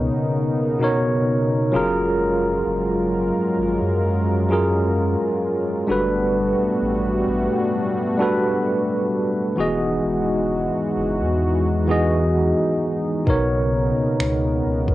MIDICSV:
0, 0, Header, 1, 5, 480
1, 0, Start_track
1, 0, Key_signature, 5, "major"
1, 0, Tempo, 923077
1, 1140, Time_signature, 4, 2, 24, 8
1, 7773, End_track
2, 0, Start_track
2, 0, Title_t, "Tine electric piano"
2, 0, Program_c, 0, 4
2, 0, Control_c, 0, 64, 127
2, 0, Note_on_c, 0, 47, 77
2, 0, Note_on_c, 0, 59, 71
2, 0, Note_on_c, 0, 63, 72
2, 0, Note_on_c, 0, 70, 73
2, 0, Note_on_c, 0, 73, 82
2, 91, Note_off_c, 0, 47, 0
2, 94, Note_off_c, 0, 59, 0
2, 97, Note_off_c, 0, 63, 0
2, 100, Note_off_c, 0, 70, 0
2, 103, Note_off_c, 0, 73, 0
2, 413, Note_on_c, 0, 47, 79
2, 419, Note_on_c, 0, 59, 70
2, 425, Note_on_c, 0, 63, 72
2, 430, Note_on_c, 0, 70, 73
2, 436, Note_on_c, 0, 73, 87
2, 893, Note_on_c, 0, 54, 85
2, 897, Note_off_c, 0, 47, 0
2, 899, Note_on_c, 0, 61, 79
2, 900, Note_off_c, 0, 59, 0
2, 903, Note_off_c, 0, 63, 0
2, 904, Note_on_c, 0, 65, 79
2, 905, Note_off_c, 0, 70, 0
2, 908, Note_off_c, 0, 73, 0
2, 908, Control_c, 0, 64, 0
2, 910, Note_on_c, 0, 68, 76
2, 916, Note_on_c, 0, 70, 94
2, 993, Control_c, 0, 64, 127
2, 1771, Note_off_c, 0, 54, 0
2, 1774, Note_off_c, 0, 61, 0
2, 1777, Note_off_c, 0, 65, 0
2, 1780, Note_off_c, 0, 68, 0
2, 1783, Note_off_c, 0, 70, 0
2, 2334, Note_on_c, 0, 54, 76
2, 2340, Note_on_c, 0, 61, 73
2, 2345, Note_on_c, 0, 65, 74
2, 2350, Note_on_c, 0, 68, 68
2, 2357, Note_on_c, 0, 70, 88
2, 2993, Note_off_c, 0, 54, 0
2, 2996, Note_off_c, 0, 61, 0
2, 2998, Note_off_c, 0, 65, 0
2, 3001, Note_off_c, 0, 68, 0
2, 3004, Note_off_c, 0, 70, 0
2, 3053, Note_on_c, 0, 55, 79
2, 3058, Note_on_c, 0, 62, 73
2, 3064, Note_on_c, 0, 66, 68
2, 3068, Control_c, 0, 64, 0
2, 3070, Note_on_c, 0, 69, 69
2, 3076, Note_on_c, 0, 71, 93
2, 3144, Control_c, 0, 64, 127
2, 3931, Note_off_c, 0, 55, 0
2, 3934, Note_off_c, 0, 62, 0
2, 3937, Note_off_c, 0, 66, 0
2, 3939, Note_off_c, 0, 69, 0
2, 3942, Note_off_c, 0, 71, 0
2, 4253, Note_on_c, 0, 55, 84
2, 4259, Note_on_c, 0, 62, 78
2, 4264, Note_on_c, 0, 66, 71
2, 4270, Note_on_c, 0, 69, 76
2, 4275, Note_on_c, 0, 71, 90
2, 4912, Note_off_c, 0, 55, 0
2, 4915, Note_off_c, 0, 62, 0
2, 4918, Note_off_c, 0, 66, 0
2, 4921, Note_off_c, 0, 69, 0
2, 4924, Note_off_c, 0, 71, 0
2, 4971, Note_on_c, 0, 52, 78
2, 4977, Note_on_c, 0, 59, 76
2, 4983, Note_on_c, 0, 66, 72
2, 4987, Control_c, 0, 64, 0
2, 4989, Note_on_c, 0, 68, 73
2, 4994, Note_on_c, 0, 75, 83
2, 5086, Control_c, 0, 64, 127
2, 5850, Note_off_c, 0, 52, 0
2, 5853, Note_off_c, 0, 59, 0
2, 5856, Note_off_c, 0, 66, 0
2, 5859, Note_off_c, 0, 68, 0
2, 5862, Note_off_c, 0, 75, 0
2, 6172, Note_on_c, 0, 52, 76
2, 6177, Note_on_c, 0, 59, 69
2, 6183, Note_on_c, 0, 66, 73
2, 6189, Note_on_c, 0, 68, 73
2, 6195, Note_on_c, 0, 75, 88
2, 6832, Note_off_c, 0, 52, 0
2, 6835, Note_off_c, 0, 59, 0
2, 6837, Note_off_c, 0, 66, 0
2, 6840, Note_off_c, 0, 68, 0
2, 6843, Note_off_c, 0, 75, 0
2, 6892, Note_on_c, 0, 47, 77
2, 6897, Note_on_c, 0, 59, 72
2, 6903, Note_on_c, 0, 63, 74
2, 6907, Control_c, 0, 64, 0
2, 6909, Note_on_c, 0, 70, 73
2, 6914, Note_on_c, 0, 73, 86
2, 7013, Control_c, 0, 64, 127
2, 7771, Note_off_c, 0, 47, 0
2, 7773, Note_off_c, 0, 59, 0
2, 7773, Note_off_c, 0, 63, 0
2, 7773, Note_off_c, 0, 70, 0
2, 7773, Note_off_c, 0, 73, 0
2, 7773, End_track
3, 0, Start_track
3, 0, Title_t, "Analog synth pad"
3, 0, Program_c, 1, 89
3, 0, Note_on_c, 1, 49, 80
3, 0, Note_on_c, 1, 59, 70
3, 0, Note_on_c, 1, 63, 87
3, 0, Note_on_c, 1, 70, 72
3, 884, Note_off_c, 1, 49, 0
3, 884, Note_off_c, 1, 59, 0
3, 884, Note_off_c, 1, 63, 0
3, 901, Note_on_c, 1, 54, 84
3, 901, Note_on_c, 1, 56, 70
3, 901, Note_on_c, 1, 65, 78
3, 3040, Note_off_c, 1, 54, 0
3, 3040, Note_off_c, 1, 56, 0
3, 3040, Note_off_c, 1, 65, 0
3, 3040, Note_off_c, 1, 70, 0
3, 3060, Note_on_c, 1, 55, 88
3, 3060, Note_on_c, 1, 57, 72
3, 3060, Note_on_c, 1, 66, 78
3, 3061, Note_on_c, 1, 59, 69
3, 4961, Note_off_c, 1, 55, 0
3, 4961, Note_off_c, 1, 57, 0
3, 4961, Note_off_c, 1, 59, 0
3, 4961, Note_off_c, 1, 66, 0
3, 4979, Note_on_c, 1, 56, 70
3, 4979, Note_on_c, 1, 63, 76
3, 4980, Note_on_c, 1, 52, 80
3, 4980, Note_on_c, 1, 66, 85
3, 6881, Note_off_c, 1, 52, 0
3, 6881, Note_off_c, 1, 56, 0
3, 6881, Note_off_c, 1, 66, 0
3, 6901, Note_on_c, 1, 49, 77
3, 6902, Note_on_c, 1, 59, 71
3, 6902, Note_on_c, 1, 70, 72
3, 7773, Note_off_c, 1, 49, 0
3, 7773, Note_off_c, 1, 59, 0
3, 7773, Note_off_c, 1, 63, 0
3, 7773, Note_off_c, 1, 70, 0
3, 7773, End_track
4, 0, Start_track
4, 0, Title_t, "Sub bass"
4, 0, Program_c, 2, 38
4, 905, Note_on_c, 2, 30, 98
4, 1362, Note_off_c, 2, 30, 0
4, 1384, Note_on_c, 2, 30, 97
4, 1722, Note_off_c, 2, 30, 0
4, 1864, Note_on_c, 2, 32, 89
4, 1971, Note_off_c, 2, 32, 0
4, 1985, Note_on_c, 2, 42, 97
4, 2682, Note_off_c, 2, 42, 0
4, 3065, Note_on_c, 2, 31, 107
4, 3402, Note_off_c, 2, 31, 0
4, 3425, Note_on_c, 2, 33, 51
4, 3472, Note_off_c, 2, 33, 0
4, 3545, Note_on_c, 2, 33, 86
4, 3762, Note_off_c, 2, 33, 0
4, 3785, Note_on_c, 2, 33, 88
4, 3891, Note_off_c, 2, 33, 0
4, 4983, Note_on_c, 2, 28, 103
4, 5201, Note_off_c, 2, 28, 0
4, 5224, Note_on_c, 2, 28, 93
4, 5561, Note_off_c, 2, 28, 0
4, 5703, Note_on_c, 2, 30, 94
4, 5823, Note_on_c, 2, 40, 97
4, 5831, Note_off_c, 2, 30, 0
4, 6521, Note_off_c, 2, 40, 0
4, 6902, Note_on_c, 2, 35, 107
4, 7241, Note_off_c, 2, 35, 0
4, 7263, Note_on_c, 2, 37, 47
4, 7310, Note_off_c, 2, 37, 0
4, 7383, Note_on_c, 2, 37, 92
4, 7601, Note_off_c, 2, 37, 0
4, 7623, Note_on_c, 2, 37, 89
4, 7730, Note_off_c, 2, 37, 0
4, 7773, End_track
5, 0, Start_track
5, 0, Title_t, "Drums"
5, 6900, Note_on_c, 9, 36, 103
5, 6952, Note_off_c, 9, 36, 0
5, 7384, Note_on_c, 9, 26, 116
5, 7436, Note_off_c, 9, 26, 0
5, 7738, Note_on_c, 9, 36, 88
5, 7773, Note_off_c, 9, 36, 0
5, 7773, End_track
0, 0, End_of_file